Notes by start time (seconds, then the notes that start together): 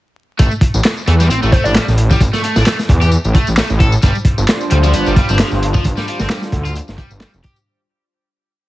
0.39 A1 A3, kick, closed hi-hat, tambourine
0.51 tambourine
0.61 kick, closed hi-hat
0.74 A1, tambourine
0.84 snare, clap, closed hi-hat, tambourine
0.97 tambourine
1.07 E2 A3, closed hi-hat
1.20 G3, closed hi-hat, tambourine
1.30 A1 C4, closed hi-hat, tambourine
1.42 A1 A3, tambourine
1.52 A3 C5, kick, closed hi-hat
1.64 A1 D4 D5, tambourine
1.75 G3, snare, clap, closed hi-hat, tambourine
1.88 A1, snare, tambourine
1.98 closed hi-hat
2.11 G3, kick, tambourine
2.21 A1, kick, closed hi-hat, tambourine
2.33 A3, snare, tambourine
2.44 A3, closed hi-hat
2.56 A1 D4, snare, tambourine
2.66 A3, snare, clap, closed hi-hat, tambourine
2.79 snare, tambourine
2.89 E2, kick, closed hi-hat
3.01 G4, closed hi-hat, tambourine
3.12 tambourine
3.24 A1, tambourine
3.35 A3, kick, closed hi-hat
3.47 A1, tambourine
3.57 A3, snare, clap, closed hi-hat, tambourine
3.70 A1, tambourine
3.80 A4, kick, closed hi-hat
3.92 tambourine
4.02 G1 G3 D4 F4 C5, kick, closed hi-hat, tambourine
4.15 tambourine
4.25 kick, closed hi-hat
4.38 G1, tambourine
4.48 snare, clap, closed hi-hat, tambourine
4.61 tambourine
4.71 D2 G3, closed hi-hat
4.83 F3, closed hi-hat, tambourine
4.93 G1 B3, closed hi-hat, tambourine
5.06 G1 G3, tambourine
5.16 G3, kick, closed hi-hat
5.29 G1 C4, tambourine
5.39 F3, snare, clap, closed hi-hat, tambourine
5.51 G1, snare, tambourine
5.63 closed hi-hat
5.74 F3, kick, tambourine
5.84 G1, kick, closed hi-hat, tambourine
5.97 G3, snare, tambourine
6.07 G3, closed hi-hat
6.20 G1 C4, snare, tambourine
6.30 G3, snare, clap, closed hi-hat, tambourine
6.42 snare, tambourine
6.52 D2, kick, closed hi-hat
6.65 F4, closed hi-hat, tambourine
6.75 closed hi-hat, tambourine
6.88 G1, snare, tambourine
6.98 G3, kick, closed hi-hat
7.11 G1, tambourine
7.20 G3, snare, clap, closed hi-hat, tambourine
7.33 F1, tambourine
7.44 G4, kick, closed hi-hat
7.56 tambourine